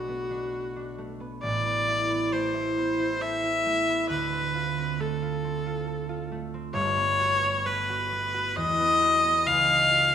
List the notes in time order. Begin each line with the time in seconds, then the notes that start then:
Already playing: B1 A3 D4 F#4
0.08 B3
0.31 D4
0.53 F#4
0.76 D4
0.98 A3
1.20 B3
1.43 A1 D5
1.66 B3
1.88 E4
2.10 B3
2.33 A3 C5
2.54 E4
2.78 B3
2.99 E4
3.21 A4 E5
3.44 E4
3.66 A3
3.89 B3
4.10 D2 B4
4.32 C4
4.55 F4
4.77 C4
5.00 A3 A4
5.22 F4
5.45 C4
5.66 F4
5.87 A4
6.09 F4
6.32 A3
6.54 C4
6.73 G1 G2 C#5
6.97 B3
7.20 F#4
7.42 B3
7.66 A3 B4
7.90 F#4
8.12 B3
8.34 F#4
8.57 E2 D#5
8.79 B3
9.01 F#4
9.24 B3
9.46 C#2 F5
9.69 D#4
9.91 F4